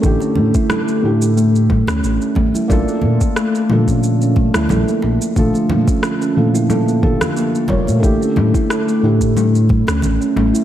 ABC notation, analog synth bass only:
X:1
M:4/4
L:1/16
Q:"Swing 16ths" 1/4=90
K:none
V:1 name="Analog synth bass" clef=bass
A,,, z A,, z3 A,,4- A,, D,, A,,, z A,,, z | _B,,, z _B,, z3 B,,4- B,, D,, B,,, z B,,, z | _B,,, z _B,, z3 B,,4- B,, z3 F,,, B,, | A,,, z A,, z3 A,,4- A,, D,, A,,, z A,,, z |]